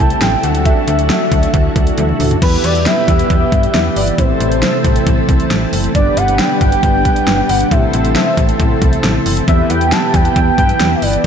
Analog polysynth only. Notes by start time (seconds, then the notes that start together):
Already playing: A3 C4 E4 A4
0.44 A3 D4 F#4 A4
2.42 B3 E4 G4 B4
4.18 C4 E4 A4 C5
5.95 B3 D4 G4 B4
7.71 C4 E4 A4 C5
9.48 B3 E4 G4 B4